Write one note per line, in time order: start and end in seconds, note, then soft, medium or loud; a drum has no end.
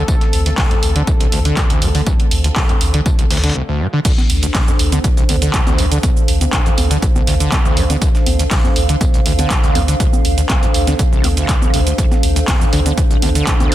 0.00 3.51 D3 medium
0.00 3.51 A3 medium
0.00 3.51 C4 medium
0.00 3.54 A4 medium
0.00 3.55 F5 medium
0.08 0.15 D2 medium
0.08 kick loud
0.08 tambourine medium
0.21 snare medium
0.21 closed hi-hat soft
0.33 0.52 D2 loud
0.33 open hi-hat loud
0.33 tambourine medium
0.46 0.50 D2 medium
0.46 closed hi-hat soft
0.46 closed hi-hat medium
0.58 0.65 C2 medium
0.58 kick loud
0.58 snare loud
0.58 clap loud
0.58 open hi-hat medium
0.71 0.75 F2 medium
0.71 closed hi-hat soft
0.83 1.01 D2 medium
0.83 open hi-hat loud
0.83 tambourine medium
0.96 1.02 D3 loud
0.96 closed hi-hat medium
1.07 1.12 D2 loud
1.07 kick loud
1.07 tambourine medium
1.20 1.27 C2 medium
1.20 closed hi-hat soft
1.20 closed hi-hat medium
1.32 1.51 D2 loud
1.32 1.39 D2 loud
1.32 open hi-hat loud
1.32 tambourine medium
1.45 1.55 D3 medium
1.45 closed hi-hat soft
1.45 closed hi-hat medium
1.57 1.64 C2 medium
1.57 kick loud
1.57 snare loud
1.57 clap loud
1.57 tambourine medium
1.70 1.83 D2 medium
1.70 closed hi-hat soft
1.70 closed hi-hat medium
1.82 2.01 D2 medium
1.82 1.89 G2 medium
1.82 open hi-hat loud
1.82 tambourine medium
1.95 2.01 D3 loud
1.95 closed hi-hat soft
1.95 open hi-hat medium
2.06 2.14 D2 medium
2.06 kick loud
2.06 tambourine medium
2.20 closed hi-hat soft
2.31 2.50 D2 loud
2.31 open hi-hat loud
2.31 tambourine medium
2.44 2.48 D2 medium
2.44 closed hi-hat soft
2.44 closed hi-hat medium
2.56 2.63 C2 medium
2.56 kick loud
2.56 snare loud
2.56 clap loud
2.56 open hi-hat medium
2.69 2.73 F2 medium
2.69 closed hi-hat soft
2.81 3.00 D2 medium
2.81 open hi-hat loud
2.81 tambourine medium
2.94 3.00 D3 loud
2.94 closed hi-hat medium
3.06 3.10 D2 loud
3.06 kick loud
3.06 tambourine medium
3.19 3.25 C2 medium
3.19 closed hi-hat medium
3.31 3.38 D2 loud
3.31 3.49 D2 loud
3.31 snare medium
3.31 open hi-hat loud
3.31 open hi-hat medium
3.37 snare medium
3.37 open hi-hat medium
3.44 3.53 D3 medium
3.44 snare medium
3.44 closed hi-hat medium
3.44 open hi-hat medium
3.49 snare medium
3.49 open hi-hat medium
3.55 3.63 C2 medium
3.68 3.82 D2 medium
3.80 3.87 G2 medium
3.93 4.00 D3 loud
4.05 4.12 D2 medium
4.05 13.75 D4 medium
4.05 kick loud
4.05 closed hi-hat medium
4.05 crash loud
4.05 tambourine medium
4.05 shaker medium
4.18 13.75 A4 medium
4.18 snare medium
4.18 high conga medium
4.18 shaker soft
4.28 4.49 D2 loud
4.28 13.75 C5 medium
4.28 open hi-hat loud
4.28 tambourine medium
4.43 4.47 D2 medium
4.43 closed hi-hat medium
4.43 closed hi-hat soft
4.43 shaker medium
4.54 4.62 C2 medium
4.54 kick loud
4.54 snare loud
4.54 clap loud
4.54 closed hi-hat medium
4.54 open hi-hat medium
4.54 high conga medium
4.54 shaker medium
4.68 4.71 F2 medium
4.68 shaker soft
4.79 4.98 D2 medium
4.79 open hi-hat loud
4.79 tambourine medium
4.92 4.99 D3 loud
4.92 closed hi-hat medium
4.92 high conga medium
4.92 shaker medium
5.04 5.08 D2 loud
5.04 kick loud
5.04 closed hi-hat medium
5.04 tambourine medium
5.04 shaker medium
5.17 5.24 C2 medium
5.17 closed hi-hat soft
5.17 shaker soft
5.29 5.48 D2 loud
5.29 5.36 D2 loud
5.29 13.27 F5 medium
5.29 open hi-hat loud
5.29 tambourine medium
5.29 high conga medium
5.42 5.52 D3 medium
5.42 closed hi-hat medium
5.42 closed hi-hat soft
5.42 shaker medium
5.54 5.61 C2 medium
5.54 kick loud
5.54 snare loud
5.54 clap loud
5.54 closed hi-hat medium
5.54 tambourine medium
5.54 shaker medium
5.67 5.80 D2 medium
5.67 closed hi-hat soft
5.67 high conga medium
5.67 shaker soft
5.78 5.97 D2 medium
5.78 5.86 G2 medium
5.78 open hi-hat medium
5.78 tambourine medium
5.92 5.98 D3 loud
5.92 closed hi-hat soft
5.92 closed hi-hat medium
5.92 shaker medium
6.03 6.11 D2 medium
6.03 kick loud
6.03 closed hi-hat medium
6.03 tambourine medium
6.03 high conga medium
6.03 shaker medium
6.17 shaker soft
6.28 6.47 D2 loud
6.28 open hi-hat loud
6.28 tambourine medium
6.41 6.45 D2 medium
6.41 closed hi-hat medium
6.41 high conga medium
6.41 shaker medium
6.53 6.60 C2 medium
6.53 kick loud
6.53 snare loud
6.53 clap loud
6.53 closed hi-hat medium
6.53 tambourine medium
6.53 shaker medium
6.66 6.70 F2 medium
6.66 closed hi-hat soft
6.66 shaker soft
6.78 6.96 D2 medium
6.78 open hi-hat loud
6.78 tambourine medium
6.78 high conga medium
6.91 6.97 D3 loud
6.91 snare medium
6.91 closed hi-hat medium
6.91 shaker medium
7.02 7.07 D2 loud
7.02 kick loud
7.02 closed hi-hat medium
7.02 tambourine medium
7.02 shaker medium
7.16 7.22 C2 medium
7.16 high conga medium
7.16 shaker soft
7.27 7.34 D2 loud
7.27 7.46 D2 loud
7.27 snare medium
7.27 open hi-hat loud
7.27 tambourine medium
7.40 7.50 D3 medium
7.40 closed hi-hat medium
7.40 shaker medium
7.52 7.59 C2 medium
7.52 kick loud
7.52 snare loud
7.52 clap loud
7.52 closed hi-hat medium
7.52 tambourine medium
7.52 high conga medium
7.52 shaker medium
7.65 7.79 D2 medium
7.65 shaker soft
7.77 7.96 D2 medium
7.77 7.84 G2 medium
7.77 open hi-hat loud
7.77 tambourine medium
7.90 7.96 D3 loud
7.90 closed hi-hat medium
7.90 high conga medium
7.90 shaker medium
8.02 8.09 D2 medium
8.02 kick loud
8.02 closed hi-hat medium
8.02 tambourine medium
8.02 shaker medium
8.15 snare medium
8.15 shaker soft
8.26 8.45 D2 loud
8.26 open hi-hat loud
8.26 tambourine medium
8.26 high conga medium
8.39 8.44 D2 medium
8.39 closed hi-hat medium
8.39 closed hi-hat soft
8.39 shaker medium
8.51 8.59 C2 medium
8.51 kick loud
8.51 snare loud
8.51 clap loud
8.51 closed hi-hat medium
8.51 open hi-hat medium
8.51 shaker medium
8.64 8.68 F2 medium
8.64 high conga medium
8.64 shaker soft
8.76 8.95 D2 medium
8.76 open hi-hat loud
8.76 tambourine medium
8.89 8.96 D3 loud
8.89 closed hi-hat medium
8.89 shaker medium
9.01 9.05 D2 loud
9.01 kick loud
9.01 closed hi-hat medium
9.01 tambourine medium
9.01 high conga medium
9.01 shaker medium
9.14 9.20 C2 medium
9.14 closed hi-hat soft
9.14 shaker soft
9.26 9.44 D2 loud
9.26 9.33 D2 loud
9.26 open hi-hat loud
9.26 tambourine medium
9.39 9.48 D3 medium
9.39 closed hi-hat soft
9.39 closed hi-hat medium
9.39 high conga medium
9.39 shaker medium
9.50 9.58 C2 medium
9.50 kick loud
9.50 snare loud
9.50 clap loud
9.50 closed hi-hat medium
9.50 tambourine medium
9.50 shaker medium
9.63 9.77 D2 medium
9.63 closed hi-hat soft
9.63 shaker soft
9.75 9.94 D2 medium
9.75 9.82 G2 medium
9.75 open hi-hat loud
9.75 tambourine medium
9.75 high conga medium
9.88 9.95 D3 loud
9.88 closed hi-hat medium
9.88 closed hi-hat soft
9.88 shaker medium
10.00 10.07 D2 medium
10.00 kick loud
10.00 closed hi-hat medium
10.00 tambourine medium
10.00 shaker medium
10.13 high conga medium
10.13 shaker soft
10.25 10.44 D2 loud
10.25 open hi-hat loud
10.25 tambourine medium
10.38 10.42 D2 medium
10.38 closed hi-hat medium
10.38 shaker medium
10.50 10.57 C2 medium
10.50 kick loud
10.50 snare loud
10.50 clap loud
10.50 closed hi-hat medium
10.50 tambourine medium
10.50 high conga medium
10.50 shaker medium
10.63 10.67 F2 medium
10.63 closed hi-hat soft
10.63 shaker soft
10.74 10.93 D2 medium
10.74 open hi-hat loud
10.74 tambourine medium
10.87 10.94 D3 loud
10.87 snare medium
10.87 closed hi-hat medium
10.87 high conga medium
10.87 shaker medium
10.99 11.03 D2 loud
10.99 kick loud
10.99 closed hi-hat medium
10.99 tambourine medium
10.99 shaker medium
11.12 11.26 C2 medium
11.12 shaker soft
11.24 11.28 D2 medium
11.24 11.43 D2 loud
11.24 snare medium
11.24 open hi-hat loud
11.24 tambourine medium
11.24 high conga medium
11.37 11.47 D2 medium
11.37 closed hi-hat medium
11.37 shaker medium
11.49 11.56 C2 medium
11.49 kick loud
11.49 snare loud
11.49 clap loud
11.49 closed hi-hat medium
11.49 tambourine medium
11.49 shaker medium
11.62 11.71 D1 medium
11.62 high conga medium
11.62 shaker soft
11.74 11.81 C2 loud
11.74 11.92 D2 medium
11.74 open hi-hat loud
11.74 tambourine medium
11.87 11.93 D2 medium
11.87 closed hi-hat medium
11.87 shaker medium
11.98 12.05 D2 medium
11.98 kick loud
11.98 closed hi-hat medium
11.98 tambourine medium
11.98 shaker medium
12.11 snare medium
12.11 high conga medium
12.11 shaker soft
12.23 12.42 D2 loud
12.23 open hi-hat loud
12.23 tambourine medium
12.36 12.40 D2 medium
12.36 closed hi-hat medium
12.36 closed hi-hat soft
12.36 shaker medium
12.48 12.55 C2 medium
12.48 kick loud
12.48 snare loud
12.48 clap loud
12.48 closed hi-hat medium
12.48 open hi-hat medium
12.48 high conga medium
12.48 shaker medium
12.61 12.65 F2 medium
12.61 shaker soft
12.73 12.92 D2 medium
12.73 12.80 D3 loud
12.73 open hi-hat loud
12.73 tambourine medium
12.86 12.92 D3 loud
12.86 closed hi-hat medium
12.86 high conga medium
12.86 shaker medium
12.98 13.02 D2 loud
12.98 kick loud
12.98 closed hi-hat soft
12.98 tambourine medium
12.98 shaker medium
13.11 13.17 C2 medium
13.11 closed hi-hat soft
13.11 shaker soft
13.22 13.41 D2 loud
13.22 13.30 D2 loud
13.22 13.75 A5 medium
13.22 open hi-hat loud
13.22 tambourine medium
13.22 high conga medium
13.35 13.45 D3 medium
13.35 closed hi-hat medium
13.35 closed hi-hat soft
13.35 shaker medium
13.47 13.54 C2 medium
13.47 kick loud
13.47 snare loud
13.47 clap loud
13.47 closed hi-hat medium
13.47 tambourine medium
13.47 shaker medium
13.60 13.74 D2 medium
13.60 closed hi-hat soft
13.60 high conga medium
13.60 shaker soft
13.72 open hi-hat medium